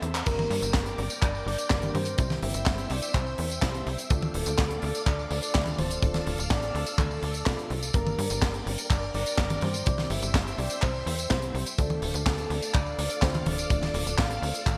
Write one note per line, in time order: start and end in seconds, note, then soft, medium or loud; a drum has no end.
0.00 0.24 E2 medium
0.00 0.24 C4 medium
0.00 0.24 E4 medium
0.00 0.24 A4 medium
0.00 0.25 C5 medium
0.00 0.24 E5 loud
0.00 0.25 E5 medium
0.00 0.25 A5 medium
0.00 0.25 E6 medium
0.00 closed hi-hat medium
0.15 clap medium
0.15 closed hi-hat medium
0.26 0.48 G1 loud
0.26 1.68 G3 medium
0.26 1.68 A#3 medium
0.26 1.68 D4 medium
0.26 1.68 A#4 medium
0.26 0.94 A#4 loud
0.26 2.17 A#4 medium
0.26 2.17 D5 medium
0.26 4.07 G5 medium
0.26 2.17 D6 medium
0.26 kick loud
0.26 closed hi-hat medium
0.26 crash loud
0.26 tambourine soft
0.39 high tom medium
0.39 tambourine soft
0.50 0.61 G2 loud
0.50 open hi-hat loud
0.62 0.73 G1 medium
0.62 closed hi-hat medium
0.62 tambourine medium
0.74 0.96 G1 medium
0.74 kick loud
0.74 snare loud
0.74 clap medium
0.74 closed hi-hat medium
0.86 closed hi-hat medium
0.86 tambourine soft
0.98 1.09 G1 medium
0.98 open hi-hat loud
1.10 closed hi-hat medium
1.10 tambourine medium
1.22 1.44 G1 medium
1.22 1.45 D5 loud
1.22 kick loud
1.22 clap medium
1.22 closed hi-hat medium
1.35 tambourine soft
1.46 1.57 G1 medium
1.46 1.91 D5 loud
1.46 open hi-hat loud
1.58 closed hi-hat medium
1.58 tambourine medium
1.70 1.92 G1 loud
1.70 1.98 G3 medium
1.70 1.98 A#3 medium
1.70 1.98 D4 medium
1.70 1.98 A#4 loud
1.70 kick loud
1.70 snare loud
1.70 clap loud
1.70 closed hi-hat medium
1.70 tambourine soft
1.82 closed hi-hat medium
1.82 high tom medium
1.82 tambourine soft
1.94 2.16 G2 medium
1.94 2.39 C5 loud
1.94 open hi-hat loud
1.94 high tom medium
2.05 closed hi-hat medium
2.05 tambourine soft
2.18 2.40 C2 medium
2.18 3.60 G3 medium
2.18 3.60 C4 medium
2.18 3.60 E4 medium
2.18 4.09 C5 medium
2.18 3.60 C5 medium
2.18 4.09 E5 medium
2.18 4.09 E6 medium
2.18 kick loud
2.18 closed hi-hat loud
2.18 tambourine soft
2.30 snare soft
2.30 high tom medium
2.30 tambourine soft
2.42 2.53 G1 loud
2.42 2.92 E5 loud
2.42 open hi-hat loud
2.54 2.65 G1 medium
2.54 closed hi-hat medium
2.54 tambourine medium
2.66 2.88 G1 medium
2.66 kick loud
2.66 snare loud
2.66 clap medium
2.66 closed hi-hat medium
2.66 tambourine soft
2.78 closed hi-hat medium
2.78 tambourine soft
2.90 3.01 C2 loud
2.90 3.16 D5 loud
2.90 open hi-hat loud
3.02 closed hi-hat medium
3.02 tambourine medium
3.14 3.36 C2 loud
3.14 3.62 C5 loud
3.14 kick loud
3.14 clap medium
3.14 closed hi-hat medium
3.26 tambourine soft
3.38 3.60 E2 medium
3.38 open hi-hat loud
3.50 closed hi-hat medium
3.50 tambourine medium
3.62 3.84 C2 medium
3.62 3.90 G3 medium
3.62 3.90 C4 medium
3.62 3.90 E4 medium
3.62 3.96 C5 loud
3.62 3.90 C5 loud
3.62 kick loud
3.62 snare loud
3.62 clap loud
3.62 closed hi-hat medium
3.62 tambourine soft
3.74 closed hi-hat medium
3.74 tambourine soft
3.87 3.97 C2 loud
3.87 open hi-hat medium
3.98 closed hi-hat medium
3.98 tambourine soft
4.10 4.32 D2 loud
4.10 5.52 A3 medium
4.10 5.52 D4 medium
4.10 5.52 F4 medium
4.10 5.08 A4 loud
4.10 7.91 A4 medium
4.10 5.52 D5 medium
4.10 7.91 D5 medium
4.10 7.91 F5 medium
4.10 6.01 D6 loud
4.10 kick loud
4.10 closed hi-hat medium
4.10 tambourine medium
4.22 high tom medium
4.22 tambourine soft
4.34 4.45 D1 loud
4.34 open hi-hat loud
4.46 4.57 D2 medium
4.46 closed hi-hat medium
4.46 tambourine medium
4.58 4.80 D2 medium
4.58 kick loud
4.58 snare loud
4.58 clap medium
4.58 closed hi-hat medium
4.58 tambourine soft
4.70 closed hi-hat medium
4.70 tambourine soft
4.82 4.93 D2 medium
4.82 open hi-hat medium
4.95 closed hi-hat medium
4.95 tambourine medium
5.06 5.28 D2 medium
5.06 5.30 D5 loud
5.06 kick loud
5.06 clap medium
5.06 closed hi-hat medium
5.06 tambourine soft
5.19 tambourine soft
5.31 5.41 D2 medium
5.31 5.80 D5 loud
5.31 open hi-hat loud
5.43 closed hi-hat medium
5.43 tambourine medium
5.55 5.76 D2 loud
5.55 5.82 A3 medium
5.55 5.82 D4 medium
5.55 5.82 F4 medium
5.55 5.82 D5 loud
5.55 kick loud
5.55 snare loud
5.55 clap medium
5.55 closed hi-hat medium
5.66 closed hi-hat soft
5.66 high tom medium
5.66 tambourine soft
5.78 6.00 D1 medium
5.78 6.27 C5 medium
5.78 open hi-hat medium
5.78 high tom medium
5.91 closed hi-hat medium
5.91 tambourine medium
6.02 6.24 D1 medium
6.02 7.44 A3 medium
6.02 7.44 D4 medium
6.02 7.44 F4 medium
6.02 7.44 D5 medium
6.02 7.92 E6 medium
6.02 kick loud
6.02 closed hi-hat medium
6.02 tambourine soft
6.14 snare soft
6.14 closed hi-hat medium
6.14 high tom medium
6.14 tambourine soft
6.27 6.37 D1 loud
6.27 open hi-hat loud
6.38 6.49 D1 medium
6.38 closed hi-hat medium
6.38 tambourine medium
6.50 6.72 A1 loud
6.50 6.95 D5 loud
6.50 kick loud
6.50 snare loud
6.50 clap medium
6.50 closed hi-hat medium
6.62 closed hi-hat medium
6.62 tambourine soft
6.75 6.85 D2 loud
6.75 open hi-hat medium
6.86 closed hi-hat medium
6.86 tambourine medium
6.98 7.20 D2 loud
6.98 7.67 A4 loud
6.98 kick loud
6.98 clap medium
6.98 closed hi-hat medium
6.98 high tom medium
7.11 tambourine soft
7.23 7.44 D2 medium
7.23 open hi-hat loud
7.34 closed hi-hat medium
7.34 tambourine medium
7.46 7.57 C2 medium
7.46 7.73 A3 medium
7.46 7.74 D4 medium
7.46 7.74 F4 medium
7.46 7.74 D5 loud
7.46 kick loud
7.46 snare loud
7.46 clap medium
7.46 closed hi-hat medium
7.46 tambourine medium
7.58 closed hi-hat soft
7.58 tambourine soft
7.70 7.92 C2 loud
7.70 open hi-hat medium
7.83 closed hi-hat medium
7.83 tambourine medium
7.93 8.16 G1 loud
7.93 9.36 G3 medium
7.93 9.36 A#3 medium
7.93 9.36 D4 medium
7.93 8.62 A#4 loud
7.93 9.84 A#4 medium
7.93 9.36 A#4 medium
7.93 9.85 D5 medium
7.93 11.75 G5 medium
7.93 9.85 D6 loud
7.93 kick loud
7.93 closed hi-hat medium
7.93 tambourine soft
8.07 high tom medium
8.07 tambourine soft
8.19 8.29 G2 loud
8.19 open hi-hat loud
8.30 8.41 G1 medium
8.30 closed hi-hat medium
8.30 tambourine medium
8.42 8.64 G1 medium
8.42 kick loud
8.42 snare loud
8.42 clap medium
8.42 closed hi-hat medium
8.42 tambourine medium
8.54 closed hi-hat soft
8.54 tambourine soft
8.67 8.77 G1 medium
8.67 open hi-hat loud
8.78 closed hi-hat medium
8.78 tambourine medium
8.90 9.12 G1 medium
8.90 9.13 D5 loud
8.90 kick loud
8.90 clap medium
8.90 closed hi-hat medium
9.02 tambourine soft
9.14 9.25 G1 medium
9.14 9.59 D5 loud
9.14 open hi-hat loud
9.26 closed hi-hat medium
9.26 tambourine medium
9.38 9.60 G1 loud
9.38 9.65 G3 medium
9.38 9.66 A#3 medium
9.38 9.66 D4 medium
9.38 9.65 A#4 loud
9.38 kick loud
9.38 snare loud
9.38 clap medium
9.38 closed hi-hat medium
9.38 tambourine soft
9.50 closed hi-hat medium
9.50 high tom medium
9.50 tambourine soft
9.61 9.84 G2 medium
9.61 9.89 C5 medium
9.61 open hi-hat medium
9.61 high tom medium
9.74 closed hi-hat medium
9.74 tambourine medium
9.86 10.08 C2 medium
9.86 11.28 G3 medium
9.86 11.28 C4 medium
9.86 11.28 E4 medium
9.86 11.77 C5 medium
9.86 11.28 C5 medium
9.86 10.12 D5 loud
9.86 11.76 E5 medium
9.86 11.76 E6 loud
9.86 kick loud
9.86 closed hi-hat loud
9.86 tambourine medium
9.98 snare soft
9.98 high tom medium
9.98 tambourine soft
10.10 10.21 G1 loud
10.10 10.60 E5 loud
10.10 open hi-hat loud
10.22 10.33 G1 medium
10.22 closed hi-hat medium
10.22 tambourine medium
10.34 10.56 G1 loud
10.34 kick loud
10.34 snare loud
10.34 clap medium
10.34 closed hi-hat medium
10.34 tambourine medium
10.47 closed hi-hat medium
10.47 tambourine soft
10.58 10.69 C2 loud
10.58 10.82 D5 loud
10.58 open hi-hat medium
10.70 closed hi-hat medium
10.70 tambourine medium
10.82 11.04 C2 medium
10.82 11.05 C5 loud
10.82 kick loud
10.82 clap medium
10.82 closed hi-hat medium
10.82 tambourine medium
10.94 tambourine soft
11.06 11.28 E2 medium
11.06 11.29 C5 medium
11.06 open hi-hat loud
11.18 closed hi-hat medium
11.18 tambourine medium
11.30 11.52 C2 medium
11.30 11.58 G3 medium
11.30 11.58 C4 medium
11.30 11.58 E4 medium
11.30 11.64 C5 loud
11.30 11.58 C5 loud
11.30 kick loud
11.30 snare loud
11.30 clap medium
11.30 closed hi-hat loud
11.42 closed hi-hat medium
11.42 tambourine soft
11.54 11.65 C2 loud
11.54 open hi-hat loud
11.66 closed hi-hat medium
11.66 tambourine medium
11.78 12.00 D2 loud
11.78 13.20 A3 medium
11.78 13.20 D4 medium
11.78 13.20 F4 medium
11.78 12.23 A4 loud
11.78 14.78 A4 medium
11.78 14.78 D5 medium
11.78 13.20 D5 medium
11.78 14.78 F5 medium
11.78 14.78 D6 loud
11.78 kick loud
11.78 closed hi-hat medium
11.78 tambourine medium
11.90 high tom medium
11.90 tambourine soft
12.02 12.13 D1 loud
12.02 open hi-hat loud
12.14 12.25 D2 medium
12.14 closed hi-hat medium
12.14 tambourine medium
12.26 12.48 D2 medium
12.26 12.76 A4 loud
12.26 kick loud
12.26 snare loud
12.26 clap medium
12.26 closed hi-hat medium
12.26 tambourine medium
12.38 closed hi-hat medium
12.38 tambourine soft
12.50 12.61 D2 loud
12.50 open hi-hat loud
12.62 closed hi-hat medium
12.62 tambourine medium
12.74 12.96 D2 medium
12.74 12.98 D5 loud
12.74 kick loud
12.74 clap medium
12.74 closed hi-hat medium
12.74 tambourine medium
12.86 tambourine soft
12.98 13.09 D2 medium
12.98 13.21 D5 loud
12.98 open hi-hat loud
13.10 closed hi-hat medium
13.10 tambourine medium
13.22 13.44 D2 loud
13.22 13.50 A3 loud
13.22 13.50 D4 medium
13.22 13.50 F4 medium
13.22 13.48 C5 loud
13.22 13.50 D5 loud
13.22 kick loud
13.22 snare loud
13.22 clap medium
13.22 closed hi-hat loud
13.22 tambourine medium
13.34 closed hi-hat medium
13.34 high tom medium
13.34 tambourine soft
13.46 13.68 D1 medium
13.46 14.20 D5 loud
13.46 open hi-hat loud
13.46 high tom medium
13.58 closed hi-hat medium
13.58 tambourine medium
13.70 13.92 D1 medium
13.70 14.78 A3 medium
13.70 14.78 D4 medium
13.70 14.78 F4 medium
13.70 14.78 D5 medium
13.70 kick loud
13.70 closed hi-hat medium
13.70 tambourine medium
13.82 snare soft
13.82 high tom medium
13.82 tambourine soft
13.94 14.05 D1 loud
13.94 open hi-hat loud
14.06 14.17 D1 medium
14.06 closed hi-hat medium
14.06 tambourine medium
14.18 14.40 A1 loud
14.18 14.66 F5 loud
14.18 kick loud
14.18 snare loud
14.18 clap loud
14.18 closed hi-hat loud
14.18 tambourine soft
14.31 closed hi-hat medium
14.31 tambourine soft
14.42 14.53 D2 medium
14.42 open hi-hat loud
14.54 closed hi-hat medium
14.54 tambourine medium
14.66 14.78 A1 medium
14.66 14.78 F5 loud
14.66 kick loud
14.66 clap medium
14.66 closed hi-hat loud
14.66 high tom medium
14.66 tambourine medium